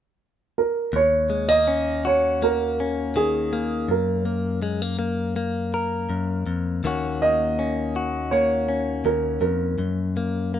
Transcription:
0, 0, Header, 1, 3, 480
1, 0, Start_track
1, 0, Key_signature, -6, "minor"
1, 0, Tempo, 738916
1, 598, Time_signature, 4, 2, 24, 8
1, 6883, End_track
2, 0, Start_track
2, 0, Title_t, "Grand piano"
2, 0, Program_c, 0, 0
2, 377, Note_on_c, 0, 70, 61
2, 615, Note_off_c, 0, 70, 0
2, 623, Note_on_c, 0, 73, 78
2, 965, Note_on_c, 0, 75, 91
2, 984, Note_off_c, 0, 73, 0
2, 1302, Note_off_c, 0, 75, 0
2, 1344, Note_on_c, 0, 73, 72
2, 1583, Note_off_c, 0, 73, 0
2, 1583, Note_on_c, 0, 70, 69
2, 2029, Note_off_c, 0, 70, 0
2, 2058, Note_on_c, 0, 68, 64
2, 2505, Note_off_c, 0, 68, 0
2, 2540, Note_on_c, 0, 70, 59
2, 3465, Note_off_c, 0, 70, 0
2, 4689, Note_on_c, 0, 75, 84
2, 5375, Note_off_c, 0, 75, 0
2, 5399, Note_on_c, 0, 73, 73
2, 5882, Note_on_c, 0, 70, 64
2, 5891, Note_off_c, 0, 73, 0
2, 6105, Note_off_c, 0, 70, 0
2, 6115, Note_on_c, 0, 70, 57
2, 6883, Note_off_c, 0, 70, 0
2, 6883, End_track
3, 0, Start_track
3, 0, Title_t, "Clean electric guitar"
3, 0, Program_c, 1, 27
3, 605, Note_on_c, 1, 39, 56
3, 843, Note_on_c, 1, 56, 42
3, 966, Note_off_c, 1, 56, 0
3, 966, Note_on_c, 1, 58, 37
3, 1089, Note_on_c, 1, 61, 48
3, 1331, Note_on_c, 1, 66, 46
3, 1567, Note_off_c, 1, 58, 0
3, 1575, Note_on_c, 1, 58, 49
3, 1817, Note_off_c, 1, 61, 0
3, 1819, Note_on_c, 1, 61, 44
3, 2052, Note_on_c, 1, 51, 48
3, 2289, Note_off_c, 1, 58, 0
3, 2292, Note_on_c, 1, 58, 47
3, 2521, Note_off_c, 1, 39, 0
3, 2524, Note_on_c, 1, 42, 62
3, 2528, Note_off_c, 1, 51, 0
3, 2760, Note_off_c, 1, 58, 0
3, 2763, Note_on_c, 1, 58, 45
3, 3002, Note_off_c, 1, 58, 0
3, 3004, Note_on_c, 1, 56, 49
3, 3024, Note_off_c, 1, 66, 0
3, 3130, Note_off_c, 1, 56, 0
3, 3130, Note_on_c, 1, 58, 37
3, 3231, Note_off_c, 1, 58, 0
3, 3239, Note_on_c, 1, 58, 50
3, 3481, Note_off_c, 1, 58, 0
3, 3484, Note_on_c, 1, 58, 50
3, 3728, Note_on_c, 1, 70, 52
3, 3951, Note_off_c, 1, 42, 0
3, 3959, Note_on_c, 1, 42, 54
3, 4093, Note_off_c, 1, 61, 0
3, 4197, Note_off_c, 1, 42, 0
3, 4200, Note_on_c, 1, 41, 49
3, 4440, Note_off_c, 1, 41, 0
3, 4443, Note_on_c, 1, 39, 65
3, 4447, Note_on_c, 1, 51, 44
3, 4450, Note_off_c, 1, 58, 0
3, 4452, Note_on_c, 1, 58, 50
3, 4458, Note_on_c, 1, 61, 48
3, 4459, Note_off_c, 1, 70, 0
3, 4462, Note_on_c, 1, 66, 54
3, 4689, Note_off_c, 1, 58, 0
3, 4692, Note_on_c, 1, 58, 44
3, 4927, Note_off_c, 1, 61, 0
3, 4930, Note_on_c, 1, 61, 47
3, 5168, Note_off_c, 1, 66, 0
3, 5171, Note_on_c, 1, 66, 51
3, 5406, Note_off_c, 1, 58, 0
3, 5409, Note_on_c, 1, 58, 51
3, 5640, Note_off_c, 1, 61, 0
3, 5642, Note_on_c, 1, 61, 43
3, 5869, Note_off_c, 1, 39, 0
3, 5877, Note_on_c, 1, 39, 52
3, 6110, Note_off_c, 1, 39, 0
3, 6112, Note_on_c, 1, 41, 51
3, 6353, Note_off_c, 1, 41, 0
3, 6356, Note_on_c, 1, 42, 55
3, 6358, Note_off_c, 1, 51, 0
3, 6602, Note_off_c, 1, 58, 0
3, 6605, Note_on_c, 1, 58, 41
3, 6845, Note_off_c, 1, 58, 0
3, 6848, Note_on_c, 1, 58, 46
3, 6883, Note_off_c, 1, 42, 0
3, 6883, Note_off_c, 1, 58, 0
3, 6883, Note_off_c, 1, 61, 0
3, 6883, Note_off_c, 1, 66, 0
3, 6883, End_track
0, 0, End_of_file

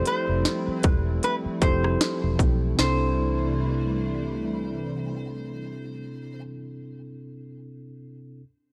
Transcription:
0, 0, Header, 1, 7, 480
1, 0, Start_track
1, 0, Key_signature, 0, "major"
1, 0, Tempo, 779221
1, 1716, Time_signature, 4, 2, 24, 8
1, 5377, End_track
2, 0, Start_track
2, 0, Title_t, "Resonator guitar played with a steel bar"
2, 0, Program_c, 0, 25
2, 44, Note_on_c, 0, 72, 102
2, 500, Note_off_c, 0, 72, 0
2, 500, Note_on_c, 0, 71, 102
2, 736, Note_off_c, 0, 71, 0
2, 764, Note_on_c, 0, 71, 91
2, 827, Note_off_c, 0, 71, 0
2, 1002, Note_on_c, 0, 72, 88
2, 1455, Note_off_c, 0, 72, 0
2, 1720, Note_on_c, 0, 72, 90
2, 3949, Note_off_c, 0, 72, 0
2, 5377, End_track
3, 0, Start_track
3, 0, Title_t, "Tine electric piano"
3, 0, Program_c, 1, 4
3, 0, Control_c, 1, 64, 127
3, 0, Note_on_c, 1, 53, 80
3, 0, Note_on_c, 1, 60, 71
3, 0, Note_on_c, 1, 64, 72
3, 0, Note_on_c, 1, 67, 66
3, 0, Note_on_c, 1, 69, 88
3, 454, Note_off_c, 1, 53, 0
3, 456, Note_off_c, 1, 60, 0
3, 458, Note_off_c, 1, 64, 0
3, 459, Note_off_c, 1, 67, 0
3, 481, Note_off_c, 1, 69, 0
3, 995, Note_on_c, 1, 53, 75
3, 998, Note_on_c, 1, 60, 68
3, 1001, Note_on_c, 1, 64, 71
3, 1005, Note_on_c, 1, 67, 69
3, 1009, Note_on_c, 1, 69, 84
3, 1482, Note_off_c, 1, 53, 0
3, 1483, Note_off_c, 1, 60, 0
3, 1485, Note_off_c, 1, 64, 0
3, 1487, Note_off_c, 1, 67, 0
3, 1488, Note_off_c, 1, 69, 0
3, 1695, Note_on_c, 1, 48, 86
3, 1708, Note_on_c, 1, 60, 77
3, 1721, Note_on_c, 1, 62, 79
3, 1725, Control_c, 1, 64, 0
3, 1734, Note_on_c, 1, 64, 73
3, 1747, Note_on_c, 1, 69, 91
3, 1835, Control_c, 1, 64, 127
3, 3925, Note_off_c, 1, 48, 0
3, 3938, Note_off_c, 1, 60, 0
3, 3950, Note_off_c, 1, 62, 0
3, 3964, Note_off_c, 1, 64, 0
3, 3976, Note_off_c, 1, 69, 0
3, 5185, Control_c, 1, 64, 0
3, 5377, End_track
4, 0, Start_track
4, 0, Title_t, "Analog synth pad"
4, 0, Program_c, 2, 89
4, 0, Note_on_c, 2, 53, 78
4, 0, Note_on_c, 2, 55, 76
4, 0, Note_on_c, 2, 57, 78
4, 0, Note_on_c, 2, 60, 89
4, 0, Note_on_c, 2, 64, 94
4, 1690, Note_off_c, 2, 57, 0
4, 1691, Note_off_c, 2, 60, 0
4, 1691, Note_off_c, 2, 64, 0
4, 1696, Note_off_c, 2, 55, 0
4, 1697, Note_off_c, 2, 53, 0
4, 1716, Note_on_c, 2, 52, 75
4, 1716, Note_on_c, 2, 64, 96
4, 1717, Note_on_c, 2, 48, 87
4, 1717, Note_on_c, 2, 55, 77
4, 1717, Note_on_c, 2, 57, 78
4, 3945, Note_off_c, 2, 64, 0
4, 3946, Note_off_c, 2, 52, 0
4, 3946, Note_off_c, 2, 55, 0
4, 3946, Note_off_c, 2, 57, 0
4, 3947, Note_off_c, 2, 48, 0
4, 5377, End_track
5, 0, Start_track
5, 0, Title_t, "Fingered electric bass"
5, 0, Program_c, 3, 33
5, 180, Note_on_c, 3, 29, 96
5, 265, Note_off_c, 3, 29, 0
5, 520, Note_on_c, 3, 28, 98
5, 727, Note_off_c, 3, 28, 0
5, 998, Note_on_c, 3, 29, 92
5, 1206, Note_off_c, 3, 29, 0
5, 1379, Note_on_c, 3, 28, 92
5, 1465, Note_off_c, 3, 28, 0
5, 1475, Note_on_c, 3, 35, 97
5, 1684, Note_off_c, 3, 35, 0
5, 1720, Note_on_c, 3, 36, 98
5, 3949, Note_off_c, 3, 36, 0
5, 5377, End_track
6, 0, Start_track
6, 0, Title_t, "Muted fingered electric bass strokes"
6, 419, Note_on_c, 9, 29, 49
6, 480, Note_off_c, 9, 29, 0
6, 898, Note_on_c, 9, 29, 50
6, 959, Note_off_c, 9, 29, 0
6, 5377, End_track
7, 0, Start_track
7, 0, Title_t, "Drums"
7, 34, Note_on_c, 9, 42, 72
7, 95, Note_off_c, 9, 42, 0
7, 278, Note_on_c, 9, 38, 121
7, 278, Note_on_c, 9, 42, 81
7, 340, Note_off_c, 9, 38, 0
7, 340, Note_off_c, 9, 42, 0
7, 513, Note_on_c, 9, 42, 88
7, 518, Note_on_c, 9, 36, 107
7, 575, Note_off_c, 9, 42, 0
7, 579, Note_off_c, 9, 36, 0
7, 757, Note_on_c, 9, 42, 74
7, 819, Note_off_c, 9, 42, 0
7, 996, Note_on_c, 9, 36, 84
7, 996, Note_on_c, 9, 42, 70
7, 1057, Note_off_c, 9, 42, 0
7, 1058, Note_off_c, 9, 36, 0
7, 1136, Note_on_c, 9, 37, 102
7, 1197, Note_off_c, 9, 37, 0
7, 1237, Note_on_c, 9, 38, 120
7, 1239, Note_on_c, 9, 42, 71
7, 1299, Note_off_c, 9, 38, 0
7, 1301, Note_off_c, 9, 42, 0
7, 1473, Note_on_c, 9, 36, 79
7, 1477, Note_on_c, 9, 42, 67
7, 1535, Note_off_c, 9, 36, 0
7, 1539, Note_off_c, 9, 42, 0
7, 1717, Note_on_c, 9, 38, 99
7, 1778, Note_off_c, 9, 38, 0
7, 5377, End_track
0, 0, End_of_file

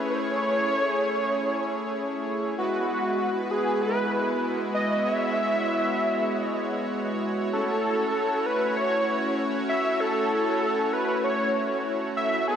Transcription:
0, 0, Header, 1, 3, 480
1, 0, Start_track
1, 0, Tempo, 618557
1, 82, Time_signature, 4, 2, 24, 8
1, 9747, End_track
2, 0, Start_track
2, 0, Title_t, "Analog synth lead"
2, 0, Program_c, 0, 81
2, 83, Note_on_c, 0, 73, 127
2, 1731, Note_off_c, 0, 73, 0
2, 2002, Note_on_c, 0, 66, 99
2, 2691, Note_off_c, 0, 66, 0
2, 2724, Note_on_c, 0, 68, 97
2, 2946, Note_off_c, 0, 68, 0
2, 2963, Note_on_c, 0, 71, 110
2, 3412, Note_off_c, 0, 71, 0
2, 3682, Note_on_c, 0, 75, 102
2, 3905, Note_off_c, 0, 75, 0
2, 3921, Note_on_c, 0, 76, 127
2, 4961, Note_off_c, 0, 76, 0
2, 4961, Note_on_c, 0, 75, 127
2, 5571, Note_off_c, 0, 75, 0
2, 5844, Note_on_c, 0, 69, 101
2, 6565, Note_on_c, 0, 71, 94
2, 6577, Note_off_c, 0, 69, 0
2, 6801, Note_off_c, 0, 71, 0
2, 6805, Note_on_c, 0, 73, 108
2, 7253, Note_off_c, 0, 73, 0
2, 7522, Note_on_c, 0, 76, 109
2, 7762, Note_on_c, 0, 69, 112
2, 7773, Note_off_c, 0, 76, 0
2, 8482, Note_on_c, 0, 71, 93
2, 8493, Note_off_c, 0, 69, 0
2, 8719, Note_off_c, 0, 71, 0
2, 8724, Note_on_c, 0, 73, 95
2, 9172, Note_off_c, 0, 73, 0
2, 9442, Note_on_c, 0, 76, 107
2, 9665, Note_off_c, 0, 76, 0
2, 9683, Note_on_c, 0, 69, 118
2, 9747, Note_off_c, 0, 69, 0
2, 9747, End_track
3, 0, Start_track
3, 0, Title_t, "Supersaw synth"
3, 0, Program_c, 1, 81
3, 0, Note_on_c, 1, 57, 79
3, 0, Note_on_c, 1, 61, 74
3, 0, Note_on_c, 1, 64, 72
3, 0, Note_on_c, 1, 68, 73
3, 0, Note_on_c, 1, 73, 90
3, 1971, Note_off_c, 1, 57, 0
3, 1971, Note_off_c, 1, 61, 0
3, 1971, Note_off_c, 1, 64, 0
3, 1971, Note_off_c, 1, 68, 0
3, 1971, Note_off_c, 1, 73, 0
3, 2000, Note_on_c, 1, 56, 79
3, 2001, Note_on_c, 1, 59, 73
3, 2001, Note_on_c, 1, 64, 77
3, 2001, Note_on_c, 1, 66, 73
3, 2001, Note_on_c, 1, 71, 88
3, 3902, Note_off_c, 1, 71, 0
3, 3921, Note_on_c, 1, 73, 89
3, 5810, Note_off_c, 1, 56, 0
3, 5810, Note_off_c, 1, 59, 0
3, 5811, Note_off_c, 1, 64, 0
3, 5841, Note_on_c, 1, 64, 75
3, 5842, Note_on_c, 1, 57, 84
3, 5842, Note_on_c, 1, 61, 74
3, 9651, Note_off_c, 1, 61, 0
3, 9651, Note_off_c, 1, 64, 0
3, 9651, Note_off_c, 1, 73, 0
3, 9681, Note_on_c, 1, 59, 72
3, 9681, Note_on_c, 1, 63, 72
3, 9681, Note_on_c, 1, 71, 90
3, 9747, Note_off_c, 1, 57, 0
3, 9747, Note_off_c, 1, 59, 0
3, 9747, Note_off_c, 1, 63, 0
3, 9747, Note_off_c, 1, 66, 0
3, 9747, Note_off_c, 1, 71, 0
3, 9747, End_track
0, 0, End_of_file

